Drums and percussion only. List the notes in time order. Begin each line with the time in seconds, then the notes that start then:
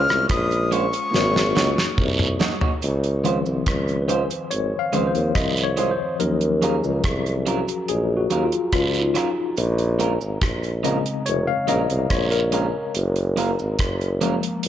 0.09 cross-stick, cabasa
0.29 kick, cross-stick, closed hi-hat
0.51 closed hi-hat, cabasa
0.72 closed hi-hat, cabasa
0.93 closed hi-hat, cabasa
1.14 snare, cabasa
1.36 snare
1.55 snare, cabasa
1.78 snare
1.98 kick, mid tom, long guiro
2.19 mid tom, cabasa
2.40 snare, cabasa
2.61 floor tom
2.82 closed hi-hat, cabasa
3.04 closed hi-hat
3.24 closed hi-hat, cabasa
3.46 cabasa
3.66 kick, cross-stick, closed hi-hat
3.88 closed hi-hat, cabasa
4.09 closed hi-hat, cabasa
4.30 closed hi-hat, cabasa
4.51 closed hi-hat, cabasa
4.93 closed hi-hat, cabasa
5.15 closed hi-hat
5.35 kick, cross-stick, closed hi-hat, long guiro
5.57 closed hi-hat, cabasa
5.77 closed hi-hat, cabasa
6.20 closed hi-hat, cabasa
6.41 closed hi-hat
6.62 closed hi-hat, cabasa
6.84 cabasa
7.04 kick, cross-stick, closed hi-hat
7.26 closed hi-hat, cabasa
7.46 closed hi-hat, cabasa
7.68 closed hi-hat, cabasa
7.88 closed hi-hat, cabasa
8.30 closed hi-hat, cabasa
8.52 closed hi-hat
8.72 kick, cross-stick, closed hi-hat, long guiro
8.94 closed hi-hat, cabasa
9.15 cross-stick, closed hi-hat, cabasa
9.57 closed hi-hat, cabasa
9.78 closed hi-hat
9.99 closed hi-hat, cabasa
10.21 cabasa
10.42 kick, cross-stick, closed hi-hat
10.63 closed hi-hat, cabasa
10.84 closed hi-hat, cabasa
11.06 closed hi-hat, cabasa
11.26 closed hi-hat, cabasa
11.67 closed hi-hat, cabasa
11.90 closed hi-hat
12.10 kick, cross-stick, closed hi-hat, long guiro
12.31 closed hi-hat, cabasa
12.52 closed hi-hat, cabasa
12.95 closed hi-hat, cabasa
13.16 closed hi-hat
13.37 closed hi-hat, cabasa
13.59 cabasa
13.79 kick, cross-stick, closed hi-hat
14.01 closed hi-hat, cabasa
14.21 closed hi-hat, cabasa
14.43 closed hi-hat, cabasa
14.63 closed hi-hat, cabasa